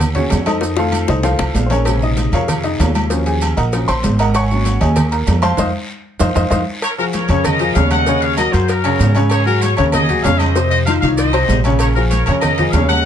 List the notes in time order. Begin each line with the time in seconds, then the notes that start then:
Already playing: D#2
0.01 high conga, low conga, maracas
0.15 C#4 F#4 G#4 C#5, cowbell, high conga, low conga, maracas
0.30 F2, cowbell, high conga, low timbale, low agogo, short guiro, maracas
0.46 D#4 A4 C5 D#5, cowbell, high conga, low agogo, short guiro, maracas
0.61 cowbell, high bongo, long guiro, maracas
0.77 D#3 A3 C4 F4 A4 C5 F5, cowbell, high bongo, high conga, maracas
0.92 cowbell, high conga, low timbale, low agogo, short guiro, maracas
1.08 C2 D#4 A4 C5 D#5, cowbell, high bongo, high conga, short guiro, maracas
1.23 F4 A4 C5 F5, cowbell, low bongo, high conga, low agogo, long guiro, maracas
1.39 C2, cowbell, low bongo, low agogo, maracas
1.54 A#1, cowbell, high conga, low timbale, short guiro, maracas
1.66 C5, cowbell, low bongo, high conga, short guiro
1.71 C#4 G#4 A#4 C#5, low agogo, maracas
1.85 C3 C#3 G#3, cowbell, high conga, low agogo, long guiro, maracas
2.01 D#4 D#5, high conga, maracas
2.17 cowbell, high conga, low timbale, low agogo, short guiro, maracas
2.32 F2 F4 A#4 C#5 F5, cowbell, high conga, low agogo, short guiro, maracas
2.48 cowbell, high conga, low conga, low agogo, long guiro, maracas
2.64 D#4 D#5, cowbell, high conga, maracas
2.79 D#2 F4 A#4 C#5 F5, cowbell, high conga, low timbale, low agogo, short guiro, maracas
2.95 cowbell, high conga, low agogo, short guiro, maracas
3.10 F3 F#3 C#4, cowbell, high conga, long guiro, maracas
3.26 G#4 G#5, cowbell, high conga, maracas
3.41 cowbell, high conga, low timbale, low agogo, short guiro, maracas
3.57 A#1 A#4 D#5 F#5 A#5, cowbell, short guiro, maracas
3.73 F3 F#3 C#4, cowbell, high conga, low agogo, long guiro, maracas
3.88 A#1 C5 C6, cowbell, high conga, low agogo, maracas
4.03 G#1, cowbell, high conga, low timbale, short guiro, maracas
4.19 A#4 D#5 F#5 A#5, cowbell, low agogo, short guiro, maracas
4.34 C#5 F#5 G#5 C#6, cowbell, low agogo, long guiro, maracas
4.50 F#3 A#3 C#4, high conga, maracas
4.65 cowbell, high conga, low timbale, low agogo, short guiro, maracas
4.80 D#2 G#4 C#5 D#5 G#5, cowbell, low agogo, short guiro, maracas
4.96 cowbell, high conga, low conga, low agogo, long guiro, maracas
5.12 A#4 A#5, cowbell, maracas
5.26 F2, cowbell, high conga, low timbale, low agogo, short guiro, maracas
5.42 C5 F5 A5 C6, cowbell, high conga, low agogo, short guiro, maracas
5.57 F2 C5 D#5 F5, cowbell, high conga, high timbale, long guiro, maracas
6.19 F2 C5 D#5 F5, cowbell, high conga, high timbale, long guiro, maracas
6.35 F2 C5 D#5 F5, cowbell, high conga, high timbale, long guiro, maracas
6.50 F2 C5 D#5 F5, cowbell, high conga, high timbale, long guiro, maracas
6.82 A#4 C#5, cowbell, high conga, low agogo, long guiro, maracas
6.98 F3 F4 F#4 G#4 A#4, high conga, maracas
7.13 A#4 C#5, cowbell, high conga, low timbale, low agogo, short guiro, maracas
7.28 F2 C#3 C#4 A#4 C#5, cowbell, high conga, low agogo, short guiro, maracas
7.44 A#4 D#5, cowbell, high conga, low conga, low agogo, long guiro, maracas
7.59 F3 F4 G#4, cowbell, high conga, maracas
7.75 D#2 C#3 C#4 C#5 F5, cowbell, high conga, low timbale, low agogo, short guiro, maracas
7.90 D#5 F#5, cowbell, high conga, low agogo, short guiro, maracas
8.06 C#3 C#4 C#5, cowbell, high conga, long guiro, maracas
8.22 C#5 F5, cowbell, high conga, maracas
8.37 F#3 F#4 A#4 D#5, cowbell, high conga, low timbale, low agogo, short guiro, maracas
8.52 F#2 F#3 F#4 G#4 A#4 C5, cowbell, short guiro, maracas
8.68 F#4 A#4, cowbell, high conga, low agogo, long guiro, maracas
8.84 C#3 C#4 C#5, cowbell, high conga, low agogo, maracas
8.99 G#2, cowbell, high conga, low timbale, short guiro, maracas
9.15 C#3 C#4 C#5, cowbell, high conga, low agogo, short guiro, maracas
9.30 G#4 C#5, cowbell, high conga, low agogo, long guiro, maracas
9.46 F#3 F#4 G#4 A#4, high conga, maracas
9.61 G#4 C#5, cowbell, high conga, low timbale, low agogo, short guiro, maracas
9.77 D#2 C#3 C#4 A#4 C#5, cowbell, low agogo, short guiro, maracas
9.92 G#4 D#5, cowbell, high conga, low conga, low agogo, long guiro, maracas
10.09 F#3 F#4 G#4, cowbell, high conga, low conga, maracas
10.23 F2 C#3 C#4 C#5 F5, cowbell, high conga, low timbale, low agogo, short guiro, maracas
10.38 C5 D#5, cowbell, high conga, low agogo, short guiro, maracas
10.55 C3 C4 C5, cowbell, high conga, long guiro, maracas
10.71 C5 D#5, cowbell, high conga, maracas
10.86 D#3 D#4 F4 C5 F5, cowbell, high conga, low timbale, low agogo, short guiro, maracas
11.01 C2 D#3 D#4 F4 C#5 F5, cowbell, high conga, short guiro, maracas
11.17 C5 D#5, cowbell, high conga, low agogo, long guiro, maracas
11.33 C3 C4 C5, cowbell, high conga, low agogo, maracas
11.48 A#1, cowbell, high conga, low timbale, short guiro, maracas
11.64 C#3 C#4 C#5, cowbell, low agogo, short guiro, maracas
11.79 A#4 C#5, cowbell, low agogo, long guiro, maracas
11.95 F3 F4 F#4 G#4 A#4, high conga, maracas
12.10 A#4 C#5, cowbell, high conga, low timbale, low agogo, short guiro, maracas
12.26 F2 C#3 C#4 A#4 C#5, cowbell, high conga, low agogo, short guiro, maracas
12.41 A#4 D#5, cowbell, high conga, low conga, low agogo, long guiro, maracas
12.58 F3 F4 G#4, cowbell, high conga, low conga, maracas
12.72 D#2 C#3 C#4 C#5 F5, cowbell, high conga, low timbale, low agogo, short guiro, maracas
12.76 C#5
12.89 D#5 F#5, cowbell, high conga, low agogo, short guiro, maracas